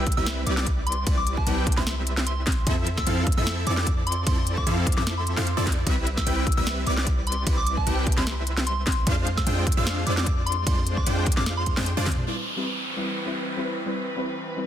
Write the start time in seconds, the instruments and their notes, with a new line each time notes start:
Already playing: 808-style bass C2
0.07 kick, closed hi-hat
0.12 closed hi-hat
0.17 808-style bass C2, supersaw synth G3 C4 E4 B4 E5, synth bell E6
0.26 synth bell E6, snare, closed hi-hat, ride
0.46 808-style bass C2, supersaw synth G3 C4 E4 B4 D5, synth bell D6, closed hi-hat
0.57 synth bell D6, snare
0.67 kick, closed hi-hat
0.86 synth bell C6, closed hi-hat
0.92 closed hi-hat
1.07 808-style bass C2, supersaw synth G3 C4 E4 B4 D5, kick, closed hi-hat, ride
1.17 synth bell D6
1.27 synth bell D6, closed hi-hat
1.37 synth bell A5, kick
1.47 808-style bass C2, supersaw synth G3 C4 E4 B4 G5, closed hi-hat
1.67 kick, closed hi-hat
1.72 closed hi-hat
1.77 808-style bass C2, supersaw synth G3 C4 E4 B4 E5, synth bell C6, snare
1.87 snare, closed hi-hat, ride
2.07 closed hi-hat
2.17 snare
2.27 synth bell C6, closed hi-hat
2.47 kick, snare, closed hi-hat
2.52 closed hi-hat
2.67 808-style bass F2, supersaw synth F3 C4 E4 A4 E5, kick, closed hi-hat, ride
2.87 closed hi-hat
2.97 synth bell E6, kick, snare
3.07 808-style bass F2, supersaw synth F3 C4 E4 A4 F5, closed hi-hat
3.27 kick, closed hi-hat
3.32 closed hi-hat
3.37 808-style bass F2, supersaw synth F3 C4 E4 A4 E5, synth bell E6
3.47 synth bell E6, snare, closed hi-hat, ride
3.67 808-style bass F2, supersaw synth F3 C4 E4 A4 D5, synth bell D6, closed hi-hat
3.77 synth bell D6, snare
3.87 kick, closed hi-hat
4.07 synth bell C6, closed hi-hat
4.12 closed hi-hat
4.27 808-style bass F2, supersaw synth F3 C4 E4 A4 D5, synth bell C6, kick, closed hi-hat, ride
4.47 closed hi-hat
4.57 synth bell D6, kick
4.67 808-style bass F2, supersaw synth F3 C4 E4 A4 F5, closed hi-hat
4.87 kick, closed hi-hat
4.92 closed hi-hat
4.97 808-style bass F2, supersaw synth F3 C4 E4 A4 E5, synth bell D6, snare
5.07 synth bell D6, snare, closed hi-hat, ride
5.17 synth bell C6
5.27 closed hi-hat
5.37 808-style bass F2, supersaw synth F3 C4 E4 A4 F5, snare
5.47 closed hi-hat
5.57 808-style bass F2, supersaw synth F3 C4 E4 A4 D5
5.67 kick, snare, closed hi-hat
5.72 closed hi-hat
5.86 808-style bass C2, supersaw synth G3 C4 E4 B4 E5, kick, closed hi-hat, ride
6.07 closed hi-hat
6.17 synth bell E6, kick, snare
6.26 808-style bass C2, supersaw synth G3 C4 E4 B4 G5, closed hi-hat
6.47 kick, closed hi-hat
6.52 closed hi-hat
6.57 808-style bass C2, supersaw synth G3 C4 E4 B4 E5, synth bell E6
6.67 synth bell E6, snare, closed hi-hat, ride
6.86 808-style bass C2, supersaw synth G3 C4 E4 B4 D5, synth bell D6, closed hi-hat
6.97 synth bell D6, snare
7.07 kick, closed hi-hat
7.27 synth bell C6, closed hi-hat
7.32 closed hi-hat
7.47 808-style bass C2, supersaw synth G3 C4 E4 B4 D5, kick, closed hi-hat, ride
7.57 synth bell D6
7.67 synth bell D6, closed hi-hat
7.77 synth bell A5, kick
7.87 808-style bass C2, supersaw synth G3 C4 E4 B4 G5, closed hi-hat
8.07 kick, closed hi-hat
8.12 closed hi-hat
8.17 808-style bass C2, supersaw synth G3 C4 E4 B4 E5, synth bell C6, snare
8.27 snare, closed hi-hat, ride
8.47 closed hi-hat
8.57 snare
8.67 synth bell C6, closed hi-hat
8.87 kick, snare, closed hi-hat
8.92 closed hi-hat
9.07 808-style bass F2, supersaw synth G#3 D4 F4 C5 F5, kick, closed hi-hat, ride
9.27 closed hi-hat
9.37 synth bell E6, kick, snare
9.47 808-style bass F2, supersaw synth G#3 D4 F4 C5 G5, closed hi-hat
9.67 kick, closed hi-hat
9.72 closed hi-hat
9.77 808-style bass F2, supersaw synth G#3 D4 F4 C5 F5, synth bell E6
9.87 synth bell E6, snare, closed hi-hat, ride
10.06 808-style bass F2, supersaw synth G#3 D4 F4 C5 D5, synth bell D6, closed hi-hat
10.17 synth bell D6, snare
10.27 kick, closed hi-hat
10.46 synth bell C6, closed hi-hat
10.52 closed hi-hat
10.66 808-style bass F2, supersaw synth G#3 D4 F4 C5 D5, synth bell C6, kick, closed hi-hat, ride
10.87 closed hi-hat
10.97 synth bell D6, kick
11.07 808-style bass F2, supersaw synth G#3 D4 F4 C5 G5, closed hi-hat
11.26 kick, closed hi-hat
11.32 closed hi-hat
11.37 808-style bass F2, supersaw synth G#3 D4 F4 C5 F5, synth bell D6, snare
11.46 snare, closed hi-hat, ride
11.57 synth bell C6
11.66 kick, closed hi-hat
11.77 808-style bass F2, supersaw synth G#3 D4 F4 C5 G5, snare
11.86 closed hi-hat
11.97 808-style bass F2, supersaw synth G#3 D4 F4 C5 D5
12.06 kick, snare, open hi-hat, high tom
12.12 closed hi-hat
12.17 mid tom
12.26 string section E3 C4 B4, synth pluck G3 C4 E4 B4, downlifter
12.56 synth pluck G3 C4 E4 B4
12.96 synth pluck G3 C4 E4 B4
13.25 synth pluck G3 C4 E4 B4
13.56 synth pluck G3 C4 E4 B4
13.86 synth pluck G3 C4 E4 B4
14.16 synth pluck G3 C4 E4 B4
14.56 synth pluck G3 C4 E4 B4